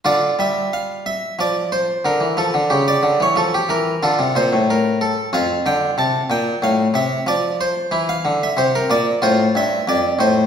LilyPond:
<<
  \new Staff \with { instrumentName = "Harpsichord" } { \time 4/4 \key d \minor \tempo 4 = 92 << { d''8 e''8 f''8 e''8 d''8 c''8 bes'8 a'8~ | a'16 d''8 cis''16 a'16 g'16 ais'8 a'8 c''8 bes'8 a'8 | f''8 g''8 a''8 g''8 f''8 e''8 d''8 c''8~ | c''16 f''8 e''16 c''16 bes'16 d''8 c''8 e''8 d''8 c''8 | } \\ { f'1 | g'2 f'2 | f'1 | e'2 f'2 | } >> }
  \new Staff \with { instrumentName = "Harpsichord" } { \clef bass \time 4/4 \key d \minor d8 g4. f4 d16 e16 f16 d16 | cis8 d16 e16 f8 e8 d16 c16 bes,16 a,4~ a,16 | f,8 d8 c8 bes,8 a,8 c8 f4 | e8 d8 c8 bes,8 a,8 g,8 f,8 a,8 | }
>>